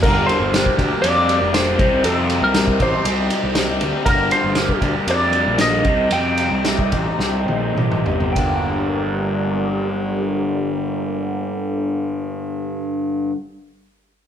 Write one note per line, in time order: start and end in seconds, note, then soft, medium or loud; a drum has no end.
0.03 0.27 G1 medium
0.03 0.79 G2 medium
0.03 0.79 D3 medium
0.03 0.53 G3 medium
0.03 0.52 A#3 medium
0.03 0.54 D4 medium
0.03 1.77 G4 medium
0.03 0.55 G4 medium
0.03 0.29 A#4 medium
0.03 1.77 A#4 medium
0.03 8.32 G5 medium
0.03 kick loud
0.03 crash medium
0.26 0.74 C5 medium
0.26 ride soft
0.40 0.64 G1 medium
0.53 0.79 G3 medium
0.53 0.78 A#3 medium
0.53 0.78 D4 medium
0.53 0.77 G4 medium
0.53 snare medium
0.53 ride medium
0.66 kick medium
0.78 0.90 D2 medium
0.78 1.03 G3 soft
0.78 1.03 A#3 medium
0.78 1.04 D4 medium
0.78 1.05 G4 medium
0.78 kick medium
0.78 ride medium
1.02 1.39 F2 medium
1.02 1.54 G3 medium
1.02 1.53 A#3 medium
1.02 1.55 D4 medium
1.02 1.55 G4 medium
1.02 1.49 D5 medium
1.02 ride medium
1.29 ride medium
1.41 1.77 F1 medium
1.53 1.77 G2 medium
1.53 1.77 D3 medium
1.53 1.80 G3 medium
1.53 1.78 A#3 medium
1.53 1.79 D4 medium
1.53 1.78 G4 medium
1.53 2.06 C5 medium
1.53 snare medium
1.53 ride medium
1.78 2.02 C2 medium
1.78 2.03 C3 medium
1.78 2.04 G3 medium
1.78 2.04 C4 medium
1.78 2.04 D#4 medium
1.78 2.05 G4 medium
1.78 4.03 C5 medium
1.78 4.03 D#5 medium
1.78 kick medium
1.78 ride medium
2.04 2.39 F2 medium
2.04 2.79 C3 medium
2.04 2.53 G3 medium
2.04 2.53 C4 medium
2.04 2.54 D#4 medium
2.04 2.55 G4 medium
2.04 2.43 A4 medium
2.04 ride medium
2.30 ride medium
2.42 2.80 C2 medium
2.42 2.81 A#4 medium
2.54 3.04 G3 medium
2.54 2.80 C4 medium
2.54 2.79 D#4 medium
2.54 2.79 G4 medium
2.54 snare medium
2.54 ride medium
2.68 kick medium
2.80 2.92 A1 medium
2.80 3.04 C4 soft
2.80 3.05 D#4 medium
2.80 3.07 G4 soft
2.80 3.78 C5 medium
2.80 kick medium
2.80 ride medium
3.05 3.28 C2 medium
3.05 3.55 G3 medium
3.05 3.55 C4 medium
3.05 3.56 D#4 medium
3.05 3.57 G4 medium
3.05 ride medium
3.30 ride medium
3.44 3.79 C2 medium
3.55 4.04 C3 medium
3.55 4.07 G3 medium
3.55 3.81 C4 medium
3.55 3.81 D#4 medium
3.55 3.81 G4 loud
3.55 snare loud
3.55 ride medium
3.81 3.92 D2 medium
3.81 4.05 C4 medium
3.81 4.05 D#4 medium
3.81 4.08 G4 medium
3.81 ride medium
4.04 4.30 G1 medium
4.04 4.82 G2 medium
4.04 4.82 D3 medium
4.04 4.56 G3 medium
4.04 4.56 A#3 medium
4.04 4.57 D4 medium
4.04 5.82 A#4 medium
4.04 4.29 A#4 medium
4.04 5.83 A#5 medium
4.04 kick medium
4.04 ride medium
4.08 4.58 G4 medium
4.31 4.79 C5 medium
4.31 ride medium
4.44 4.68 G1 medium
4.55 4.83 G3 medium
4.55 4.82 A#3 medium
4.55 4.82 D4 medium
4.55 4.81 G4 medium
4.55 snare medium
4.55 ride medium
4.69 kick medium
4.81 4.93 D2 medium
4.81 5.08 G3 medium
4.81 5.08 A#3 soft
4.81 5.09 D4 medium
4.81 5.10 G4 soft
4.81 kick medium
4.81 ride medium
5.07 5.44 F2 medium
5.07 5.60 G3 medium
5.07 5.60 A#3 medium
5.07 5.61 D4 medium
5.07 5.61 G4 medium
5.07 5.61 D5 medium
5.07 ride medium
5.33 ride soft
5.46 5.83 A#1 medium
5.58 5.84 G2 medium
5.58 5.84 D3 medium
5.58 5.86 G3 medium
5.58 5.84 A#3 medium
5.58 5.85 D4 medium
5.58 5.85 G4 medium
5.58 6.14 D#5 medium
5.58 snare loud
5.58 ride medium
5.85 6.10 C2 medium
5.85 6.10 C3 medium
5.85 6.11 G3 medium
5.85 6.11 C4 medium
5.85 6.12 D#4 medium
5.85 6.12 G4 medium
5.85 8.33 D#5 medium
5.85 8.33 C6 medium
5.85 kick medium
5.85 ride soft
6.10 6.49 F2 medium
6.10 6.92 C3 medium
6.10 6.64 G3 medium
6.10 6.64 C4 medium
6.10 6.65 D#4 medium
6.10 6.66 G4 medium
6.10 7.74 G5 medium
6.10 ride medium
6.38 ride soft
6.51 6.93 C2 medium
6.65 7.19 G3 medium
6.65 6.93 C4 medium
6.65 6.92 D#4 medium
6.65 6.91 G4 medium
6.65 snare medium
6.65 ride medium
6.79 kick medium
6.92 7.06 A1 medium
6.92 7.20 C4 soft
6.92 7.20 D#4 soft
6.92 7.21 G4 medium
6.92 kick medium
6.92 ride medium
7.19 7.46 C2 medium
7.19 7.76 G3 medium
7.19 7.76 C4 medium
7.19 7.77 D#4 medium
7.19 7.78 G4 medium
7.19 snare soft
7.47 7.73 A#1 medium
7.47 high tom soft
7.75 8.02 A1 medium
7.75 8.34 C3 medium
7.75 8.34 G3 medium
7.75 8.07 C4 medium
7.75 8.06 D#4 medium
7.75 8.05 G4 medium
7.75 mid tom medium
7.92 mid tom medium
8.04 8.32 G1 medium
8.04 8.34 D#4 medium
8.04 8.34 G4 medium
8.04 floor tom medium
8.08 8.35 C4 soft
8.20 floor tom medium
8.33 13.31 G1 medium
8.33 13.35 G2 medium
8.33 13.35 D3 medium
8.33 13.31 G4 medium
8.33 13.31 A#4 medium
8.33 13.31 D5 medium
8.33 13.28 G5 medium
8.33 13.31 G5 medium
8.33 kick medium
8.33 ride medium
8.37 13.36 G3 medium
8.37 13.37 A#3 medium
8.37 13.38 D4 medium
8.37 13.38 G4 medium